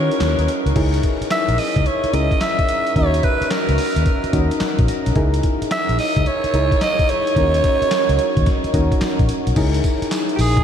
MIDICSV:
0, 0, Header, 1, 6, 480
1, 0, Start_track
1, 0, Tempo, 550459
1, 660, Time_signature, 4, 2, 24, 8
1, 9276, End_track
2, 0, Start_track
2, 0, Title_t, "Alto saxophone"
2, 0, Program_c, 0, 65
2, 0, Note_on_c, 0, 73, 91
2, 431, Note_off_c, 0, 73, 0
2, 1147, Note_on_c, 0, 76, 107
2, 1386, Note_on_c, 0, 75, 101
2, 1399, Note_off_c, 0, 76, 0
2, 1628, Note_on_c, 0, 73, 91
2, 1641, Note_off_c, 0, 75, 0
2, 1869, Note_on_c, 0, 75, 98
2, 1882, Note_off_c, 0, 73, 0
2, 2105, Note_on_c, 0, 76, 110
2, 2118, Note_off_c, 0, 75, 0
2, 2581, Note_off_c, 0, 76, 0
2, 2586, Note_on_c, 0, 73, 95
2, 2822, Note_on_c, 0, 71, 90
2, 2835, Note_off_c, 0, 73, 0
2, 3060, Note_on_c, 0, 70, 83
2, 3073, Note_off_c, 0, 71, 0
2, 4020, Note_off_c, 0, 70, 0
2, 4988, Note_on_c, 0, 76, 113
2, 5208, Note_off_c, 0, 76, 0
2, 5229, Note_on_c, 0, 75, 94
2, 5470, Note_on_c, 0, 73, 102
2, 5483, Note_off_c, 0, 75, 0
2, 5947, Note_on_c, 0, 75, 110
2, 5960, Note_off_c, 0, 73, 0
2, 6188, Note_on_c, 0, 73, 106
2, 6201, Note_off_c, 0, 75, 0
2, 7864, Note_off_c, 0, 73, 0
2, 9029, Note_on_c, 0, 67, 59
2, 9079, Note_on_c, 0, 68, 95
2, 9092, Note_off_c, 0, 67, 0
2, 9276, Note_off_c, 0, 68, 0
2, 9276, End_track
3, 0, Start_track
3, 0, Title_t, "Synth keys"
3, 0, Program_c, 1, 88
3, 0, Control_c, 1, 64, 127
3, 0, Note_on_c, 1, 61, 74
3, 0, Note_on_c, 1, 63, 69
3, 0, Note_on_c, 1, 64, 57
3, 0, Note_on_c, 1, 66, 65
3, 0, Note_on_c, 1, 70, 77
3, 589, Note_off_c, 1, 61, 0
3, 590, Note_off_c, 1, 63, 0
3, 593, Note_off_c, 1, 70, 0
3, 620, Note_off_c, 1, 66, 0
3, 657, Note_on_c, 1, 63, 83
3, 659, Note_off_c, 1, 64, 0
3, 659, Note_on_c, 1, 64, 81
3, 665, Note_on_c, 1, 68, 83
3, 667, Note_on_c, 1, 70, 88
3, 673, Control_c, 1, 64, 0
3, 832, Control_c, 1, 64, 127
3, 1517, Note_off_c, 1, 63, 0
3, 1519, Note_off_c, 1, 64, 0
3, 1521, Note_off_c, 1, 68, 0
3, 1522, Note_off_c, 1, 70, 0
3, 1857, Note_on_c, 1, 61, 71
3, 1861, Note_on_c, 1, 64, 68
3, 1864, Note_on_c, 1, 68, 63
3, 1868, Note_on_c, 1, 70, 79
3, 2509, Note_off_c, 1, 61, 0
3, 2511, Note_off_c, 1, 64, 0
3, 2512, Note_off_c, 1, 68, 0
3, 2514, Note_off_c, 1, 70, 0
3, 2577, Note_on_c, 1, 61, 71
3, 2581, Note_on_c, 1, 63, 66
3, 2583, Note_on_c, 1, 66, 66
3, 2587, Note_on_c, 1, 70, 84
3, 2590, Control_c, 1, 64, 0
3, 2718, Control_c, 1, 64, 127
3, 3437, Note_off_c, 1, 61, 0
3, 3439, Note_off_c, 1, 63, 0
3, 3440, Note_off_c, 1, 66, 0
3, 3442, Note_off_c, 1, 70, 0
3, 3773, Note_on_c, 1, 61, 89
3, 3775, Note_on_c, 1, 63, 82
3, 3778, Note_on_c, 1, 75, 71
3, 3779, Note_on_c, 1, 66, 78
3, 3783, Note_on_c, 1, 70, 100
3, 4002, Note_off_c, 1, 75, 0
3, 4019, Note_on_c, 1, 78, 71
3, 4243, Note_off_c, 1, 78, 0
3, 4261, Note_on_c, 1, 82, 66
3, 4427, Note_off_c, 1, 61, 0
3, 4428, Note_off_c, 1, 63, 0
3, 4430, Note_off_c, 1, 66, 0
3, 4432, Note_off_c, 1, 70, 0
3, 4484, Note_off_c, 1, 82, 0
3, 4495, Note_on_c, 1, 63, 88
3, 4498, Note_on_c, 1, 64, 79
3, 4502, Note_on_c, 1, 68, 85
3, 4506, Note_on_c, 1, 70, 101
3, 4513, Control_c, 1, 64, 0
3, 4655, Control_c, 1, 64, 127
3, 5356, Note_off_c, 1, 63, 0
3, 5358, Note_off_c, 1, 64, 0
3, 5360, Note_off_c, 1, 68, 0
3, 5362, Note_off_c, 1, 70, 0
3, 5700, Note_on_c, 1, 63, 76
3, 5703, Note_on_c, 1, 64, 65
3, 5707, Note_on_c, 1, 68, 66
3, 5710, Note_on_c, 1, 70, 83
3, 6350, Note_off_c, 1, 63, 0
3, 6352, Note_off_c, 1, 64, 0
3, 6354, Note_off_c, 1, 68, 0
3, 6355, Note_off_c, 1, 70, 0
3, 6419, Note_on_c, 1, 61, 77
3, 6421, Note_on_c, 1, 63, 71
3, 6425, Note_on_c, 1, 64, 57
3, 6430, Control_c, 1, 64, 0
3, 6430, Note_on_c, 1, 70, 88
3, 6482, Note_on_c, 1, 66, 73
3, 6496, Note_off_c, 1, 64, 0
3, 6603, Control_c, 1, 64, 127
3, 7278, Note_off_c, 1, 61, 0
3, 7279, Note_off_c, 1, 63, 0
3, 7284, Note_off_c, 1, 70, 0
3, 7310, Note_off_c, 1, 66, 0
3, 7616, Note_on_c, 1, 61, 87
3, 7620, Note_on_c, 1, 63, 81
3, 7623, Note_on_c, 1, 66, 78
3, 7628, Note_on_c, 1, 70, 99
3, 8268, Note_off_c, 1, 61, 0
3, 8271, Note_off_c, 1, 63, 0
3, 8272, Note_off_c, 1, 66, 0
3, 8274, Note_off_c, 1, 70, 0
3, 8338, Note_on_c, 1, 63, 92
3, 8343, Note_on_c, 1, 64, 82
3, 8345, Note_on_c, 1, 68, 79
3, 8348, Note_on_c, 1, 70, 105
3, 8351, Control_c, 1, 64, 0
3, 8483, Control_c, 1, 64, 127
3, 9198, Note_off_c, 1, 63, 0
3, 9200, Note_off_c, 1, 64, 0
3, 9201, Note_off_c, 1, 68, 0
3, 9203, Note_off_c, 1, 70, 0
3, 9276, End_track
4, 0, Start_track
4, 0, Title_t, "Fingered electric bass"
4, 0, Program_c, 2, 33
4, 179, Note_on_c, 2, 39, 95
4, 313, Note_off_c, 2, 39, 0
4, 336, Note_on_c, 2, 39, 82
4, 407, Note_off_c, 2, 39, 0
4, 573, Note_on_c, 2, 37, 93
4, 645, Note_off_c, 2, 37, 0
4, 662, Note_on_c, 2, 37, 103
4, 865, Note_off_c, 2, 37, 0
4, 1294, Note_on_c, 2, 34, 89
4, 1366, Note_off_c, 2, 34, 0
4, 1537, Note_on_c, 2, 37, 90
4, 1607, Note_off_c, 2, 37, 0
4, 1860, Note_on_c, 2, 37, 91
4, 1993, Note_off_c, 2, 37, 0
4, 2581, Note_on_c, 2, 39, 97
4, 2784, Note_off_c, 2, 39, 0
4, 3216, Note_on_c, 2, 37, 87
4, 3287, Note_off_c, 2, 37, 0
4, 3455, Note_on_c, 2, 39, 94
4, 3527, Note_off_c, 2, 39, 0
4, 3779, Note_on_c, 2, 39, 96
4, 3913, Note_off_c, 2, 39, 0
4, 4175, Note_on_c, 2, 34, 93
4, 4246, Note_off_c, 2, 34, 0
4, 4418, Note_on_c, 2, 35, 89
4, 4488, Note_off_c, 2, 35, 0
4, 4498, Note_on_c, 2, 37, 98
4, 4703, Note_off_c, 2, 37, 0
4, 5137, Note_on_c, 2, 34, 97
4, 5207, Note_off_c, 2, 34, 0
4, 5376, Note_on_c, 2, 37, 87
4, 5447, Note_off_c, 2, 37, 0
4, 5698, Note_on_c, 2, 37, 87
4, 5832, Note_off_c, 2, 37, 0
4, 6421, Note_on_c, 2, 39, 105
4, 6624, Note_off_c, 2, 39, 0
4, 7057, Note_on_c, 2, 37, 91
4, 7127, Note_off_c, 2, 37, 0
4, 7298, Note_on_c, 2, 39, 91
4, 7368, Note_off_c, 2, 39, 0
4, 7620, Note_on_c, 2, 39, 96
4, 7753, Note_off_c, 2, 39, 0
4, 8018, Note_on_c, 2, 34, 92
4, 8088, Note_off_c, 2, 34, 0
4, 8257, Note_on_c, 2, 35, 95
4, 8327, Note_off_c, 2, 35, 0
4, 8340, Note_on_c, 2, 37, 109
4, 8544, Note_off_c, 2, 37, 0
4, 9059, Note_on_c, 2, 34, 94
4, 9263, Note_off_c, 2, 34, 0
4, 9276, End_track
5, 0, Start_track
5, 0, Title_t, "Muted fingered electric bass strokes"
5, 1057, Note_on_c, 9, 29, 48
5, 1144, Note_off_c, 9, 29, 0
5, 1776, Note_on_c, 9, 29, 45
5, 1863, Note_off_c, 9, 29, 0
5, 2975, Note_on_c, 9, 29, 49
5, 3063, Note_off_c, 9, 29, 0
5, 3696, Note_on_c, 9, 29, 48
5, 3783, Note_off_c, 9, 29, 0
5, 4021, Note_on_c, 9, 29, 46
5, 4109, Note_off_c, 9, 29, 0
5, 4898, Note_on_c, 9, 29, 49
5, 4985, Note_off_c, 9, 29, 0
5, 5616, Note_on_c, 9, 29, 45
5, 5703, Note_off_c, 9, 29, 0
5, 6816, Note_on_c, 9, 29, 49
5, 6903, Note_off_c, 9, 29, 0
5, 7536, Note_on_c, 9, 29, 46
5, 7624, Note_off_c, 9, 29, 0
5, 7860, Note_on_c, 9, 29, 48
5, 7947, Note_off_c, 9, 29, 0
5, 8737, Note_on_c, 9, 29, 50
5, 8825, Note_off_c, 9, 29, 0
5, 9276, End_track
6, 0, Start_track
6, 0, Title_t, "Drums"
6, 100, Note_on_c, 9, 42, 55
6, 180, Note_on_c, 9, 38, 108
6, 181, Note_off_c, 9, 42, 0
6, 181, Note_on_c, 9, 42, 73
6, 183, Note_on_c, 9, 39, 89
6, 267, Note_off_c, 9, 38, 0
6, 268, Note_off_c, 9, 42, 0
6, 270, Note_off_c, 9, 39, 0
6, 338, Note_on_c, 9, 42, 57
6, 422, Note_off_c, 9, 42, 0
6, 422, Note_on_c, 9, 42, 81
6, 509, Note_off_c, 9, 42, 0
6, 580, Note_on_c, 9, 42, 55
6, 661, Note_off_c, 9, 42, 0
6, 661, Note_on_c, 9, 36, 103
6, 661, Note_on_c, 9, 42, 63
6, 661, Note_on_c, 9, 49, 82
6, 748, Note_off_c, 9, 42, 0
6, 748, Note_off_c, 9, 49, 0
6, 749, Note_off_c, 9, 36, 0
6, 818, Note_on_c, 9, 42, 60
6, 902, Note_off_c, 9, 42, 0
6, 902, Note_on_c, 9, 42, 81
6, 903, Note_on_c, 9, 36, 84
6, 989, Note_off_c, 9, 42, 0
6, 991, Note_off_c, 9, 36, 0
6, 1062, Note_on_c, 9, 42, 51
6, 1140, Note_on_c, 9, 38, 97
6, 1141, Note_off_c, 9, 42, 0
6, 1141, Note_on_c, 9, 42, 66
6, 1144, Note_on_c, 9, 39, 80
6, 1227, Note_off_c, 9, 38, 0
6, 1228, Note_off_c, 9, 42, 0
6, 1231, Note_off_c, 9, 39, 0
6, 1295, Note_on_c, 9, 42, 51
6, 1379, Note_on_c, 9, 46, 76
6, 1382, Note_off_c, 9, 42, 0
6, 1466, Note_off_c, 9, 46, 0
6, 1537, Note_on_c, 9, 36, 101
6, 1538, Note_on_c, 9, 42, 58
6, 1620, Note_off_c, 9, 42, 0
6, 1620, Note_on_c, 9, 42, 63
6, 1625, Note_off_c, 9, 36, 0
6, 1708, Note_off_c, 9, 42, 0
6, 1776, Note_on_c, 9, 42, 46
6, 1862, Note_off_c, 9, 42, 0
6, 1862, Note_on_c, 9, 42, 81
6, 1949, Note_off_c, 9, 42, 0
6, 2016, Note_on_c, 9, 36, 93
6, 2020, Note_on_c, 9, 42, 53
6, 2101, Note_on_c, 9, 38, 108
6, 2102, Note_off_c, 9, 42, 0
6, 2102, Note_on_c, 9, 42, 75
6, 2103, Note_off_c, 9, 36, 0
6, 2104, Note_on_c, 9, 39, 87
6, 2188, Note_off_c, 9, 38, 0
6, 2189, Note_off_c, 9, 42, 0
6, 2192, Note_off_c, 9, 39, 0
6, 2257, Note_on_c, 9, 42, 58
6, 2258, Note_on_c, 9, 36, 94
6, 2341, Note_off_c, 9, 42, 0
6, 2341, Note_on_c, 9, 42, 82
6, 2345, Note_off_c, 9, 36, 0
6, 2429, Note_off_c, 9, 42, 0
6, 2500, Note_on_c, 9, 42, 52
6, 2580, Note_on_c, 9, 36, 103
6, 2581, Note_off_c, 9, 42, 0
6, 2581, Note_on_c, 9, 42, 67
6, 2668, Note_off_c, 9, 36, 0
6, 2668, Note_off_c, 9, 42, 0
6, 2738, Note_on_c, 9, 42, 61
6, 2819, Note_off_c, 9, 42, 0
6, 2819, Note_on_c, 9, 42, 78
6, 2821, Note_on_c, 9, 36, 96
6, 2906, Note_off_c, 9, 42, 0
6, 2908, Note_off_c, 9, 36, 0
6, 2980, Note_on_c, 9, 42, 53
6, 3059, Note_off_c, 9, 42, 0
6, 3059, Note_on_c, 9, 38, 99
6, 3059, Note_on_c, 9, 42, 65
6, 3062, Note_on_c, 9, 39, 81
6, 3146, Note_off_c, 9, 38, 0
6, 3147, Note_off_c, 9, 42, 0
6, 3150, Note_off_c, 9, 39, 0
6, 3215, Note_on_c, 9, 42, 50
6, 3297, Note_on_c, 9, 46, 82
6, 3302, Note_off_c, 9, 42, 0
6, 3384, Note_off_c, 9, 46, 0
6, 3456, Note_on_c, 9, 42, 60
6, 3538, Note_off_c, 9, 42, 0
6, 3538, Note_on_c, 9, 42, 65
6, 3539, Note_on_c, 9, 36, 86
6, 3625, Note_off_c, 9, 42, 0
6, 3627, Note_off_c, 9, 36, 0
6, 3696, Note_on_c, 9, 42, 47
6, 3778, Note_off_c, 9, 42, 0
6, 3778, Note_on_c, 9, 42, 86
6, 3779, Note_on_c, 9, 36, 88
6, 3865, Note_off_c, 9, 42, 0
6, 3866, Note_off_c, 9, 36, 0
6, 3936, Note_on_c, 9, 42, 56
6, 4014, Note_on_c, 9, 38, 109
6, 4015, Note_off_c, 9, 42, 0
6, 4015, Note_on_c, 9, 42, 82
6, 4018, Note_on_c, 9, 39, 84
6, 4102, Note_off_c, 9, 38, 0
6, 4103, Note_off_c, 9, 42, 0
6, 4105, Note_off_c, 9, 39, 0
6, 4173, Note_on_c, 9, 42, 61
6, 4175, Note_on_c, 9, 36, 97
6, 4258, Note_off_c, 9, 42, 0
6, 4258, Note_on_c, 9, 42, 85
6, 4263, Note_off_c, 9, 36, 0
6, 4345, Note_off_c, 9, 42, 0
6, 4415, Note_on_c, 9, 42, 57
6, 4496, Note_off_c, 9, 42, 0
6, 4496, Note_on_c, 9, 42, 65
6, 4498, Note_on_c, 9, 36, 108
6, 4583, Note_off_c, 9, 42, 0
6, 4585, Note_off_c, 9, 36, 0
6, 4654, Note_on_c, 9, 42, 58
6, 4738, Note_off_c, 9, 42, 0
6, 4738, Note_on_c, 9, 42, 78
6, 4741, Note_on_c, 9, 36, 91
6, 4826, Note_off_c, 9, 42, 0
6, 4828, Note_off_c, 9, 36, 0
6, 4900, Note_on_c, 9, 42, 59
6, 4981, Note_off_c, 9, 42, 0
6, 4981, Note_on_c, 9, 38, 105
6, 4981, Note_on_c, 9, 42, 66
6, 4984, Note_on_c, 9, 39, 80
6, 5068, Note_off_c, 9, 38, 0
6, 5068, Note_off_c, 9, 42, 0
6, 5071, Note_off_c, 9, 39, 0
6, 5138, Note_on_c, 9, 42, 53
6, 5221, Note_on_c, 9, 46, 79
6, 5225, Note_off_c, 9, 42, 0
6, 5308, Note_off_c, 9, 46, 0
6, 5376, Note_on_c, 9, 36, 96
6, 5378, Note_on_c, 9, 42, 61
6, 5460, Note_off_c, 9, 42, 0
6, 5460, Note_on_c, 9, 42, 61
6, 5464, Note_off_c, 9, 36, 0
6, 5547, Note_off_c, 9, 42, 0
6, 5616, Note_on_c, 9, 42, 48
6, 5701, Note_off_c, 9, 42, 0
6, 5701, Note_on_c, 9, 42, 80
6, 5788, Note_off_c, 9, 42, 0
6, 5856, Note_on_c, 9, 36, 98
6, 5860, Note_on_c, 9, 42, 56
6, 5942, Note_on_c, 9, 38, 112
6, 5943, Note_off_c, 9, 36, 0
6, 5943, Note_off_c, 9, 42, 0
6, 5943, Note_on_c, 9, 42, 72
6, 5945, Note_on_c, 9, 39, 91
6, 6029, Note_off_c, 9, 38, 0
6, 6030, Note_off_c, 9, 42, 0
6, 6033, Note_off_c, 9, 39, 0
6, 6098, Note_on_c, 9, 36, 107
6, 6099, Note_on_c, 9, 42, 61
6, 6182, Note_off_c, 9, 42, 0
6, 6182, Note_on_c, 9, 42, 85
6, 6185, Note_off_c, 9, 36, 0
6, 6269, Note_off_c, 9, 42, 0
6, 6340, Note_on_c, 9, 42, 53
6, 6421, Note_on_c, 9, 36, 101
6, 6422, Note_off_c, 9, 42, 0
6, 6422, Note_on_c, 9, 42, 72
6, 6508, Note_off_c, 9, 36, 0
6, 6510, Note_off_c, 9, 42, 0
6, 6577, Note_on_c, 9, 42, 57
6, 6661, Note_off_c, 9, 42, 0
6, 6661, Note_on_c, 9, 42, 73
6, 6662, Note_on_c, 9, 36, 91
6, 6748, Note_off_c, 9, 42, 0
6, 6749, Note_off_c, 9, 36, 0
6, 6821, Note_on_c, 9, 42, 57
6, 6900, Note_off_c, 9, 42, 0
6, 6900, Note_on_c, 9, 38, 104
6, 6900, Note_on_c, 9, 42, 74
6, 6903, Note_on_c, 9, 39, 85
6, 6987, Note_off_c, 9, 38, 0
6, 6988, Note_off_c, 9, 42, 0
6, 6990, Note_off_c, 9, 39, 0
6, 7057, Note_on_c, 9, 42, 51
6, 7139, Note_off_c, 9, 42, 0
6, 7139, Note_on_c, 9, 42, 79
6, 7227, Note_off_c, 9, 42, 0
6, 7297, Note_on_c, 9, 36, 102
6, 7297, Note_on_c, 9, 42, 60
6, 7380, Note_off_c, 9, 42, 0
6, 7380, Note_on_c, 9, 42, 66
6, 7381, Note_off_c, 9, 36, 0
6, 7381, Note_on_c, 9, 36, 91
6, 7381, Note_on_c, 9, 38, 68
6, 7467, Note_off_c, 9, 42, 0
6, 7468, Note_off_c, 9, 36, 0
6, 7468, Note_off_c, 9, 38, 0
6, 7536, Note_on_c, 9, 42, 48
6, 7620, Note_off_c, 9, 42, 0
6, 7620, Note_on_c, 9, 36, 98
6, 7620, Note_on_c, 9, 42, 89
6, 7707, Note_off_c, 9, 36, 0
6, 7707, Note_off_c, 9, 42, 0
6, 7775, Note_on_c, 9, 36, 93
6, 7777, Note_on_c, 9, 42, 60
6, 7859, Note_on_c, 9, 38, 119
6, 7860, Note_off_c, 9, 42, 0
6, 7860, Note_on_c, 9, 42, 76
6, 7862, Note_off_c, 9, 36, 0
6, 7862, Note_on_c, 9, 39, 86
6, 7946, Note_off_c, 9, 38, 0
6, 7947, Note_off_c, 9, 42, 0
6, 7949, Note_off_c, 9, 39, 0
6, 8017, Note_on_c, 9, 36, 98
6, 8017, Note_on_c, 9, 42, 61
6, 8099, Note_off_c, 9, 42, 0
6, 8099, Note_on_c, 9, 42, 86
6, 8104, Note_off_c, 9, 36, 0
6, 8186, Note_off_c, 9, 42, 0
6, 8257, Note_on_c, 9, 42, 56
6, 8338, Note_off_c, 9, 42, 0
6, 8338, Note_on_c, 9, 42, 73
6, 8338, Note_on_c, 9, 49, 96
6, 8338, Note_on_c, 9, 54, 59
6, 8340, Note_on_c, 9, 36, 108
6, 8425, Note_off_c, 9, 42, 0
6, 8425, Note_off_c, 9, 49, 0
6, 8426, Note_off_c, 9, 54, 0
6, 8427, Note_off_c, 9, 36, 0
6, 8496, Note_on_c, 9, 42, 64
6, 8580, Note_off_c, 9, 42, 0
6, 8580, Note_on_c, 9, 42, 77
6, 8581, Note_on_c, 9, 54, 78
6, 8582, Note_on_c, 9, 36, 94
6, 8667, Note_off_c, 9, 42, 0
6, 8668, Note_off_c, 9, 54, 0
6, 8669, Note_off_c, 9, 36, 0
6, 8740, Note_on_c, 9, 42, 55
6, 8820, Note_off_c, 9, 42, 0
6, 8820, Note_on_c, 9, 38, 99
6, 8820, Note_on_c, 9, 42, 68
6, 8822, Note_on_c, 9, 54, 94
6, 8823, Note_on_c, 9, 39, 90
6, 8907, Note_off_c, 9, 38, 0
6, 8907, Note_off_c, 9, 42, 0
6, 8909, Note_off_c, 9, 54, 0
6, 8910, Note_off_c, 9, 39, 0
6, 8975, Note_on_c, 9, 42, 49
6, 9058, Note_on_c, 9, 46, 80
6, 9062, Note_off_c, 9, 42, 0
6, 9062, Note_on_c, 9, 54, 66
6, 9145, Note_off_c, 9, 46, 0
6, 9149, Note_off_c, 9, 54, 0
6, 9217, Note_on_c, 9, 36, 99
6, 9218, Note_on_c, 9, 42, 64
6, 9276, Note_off_c, 9, 36, 0
6, 9276, Note_off_c, 9, 42, 0
6, 9276, End_track
0, 0, End_of_file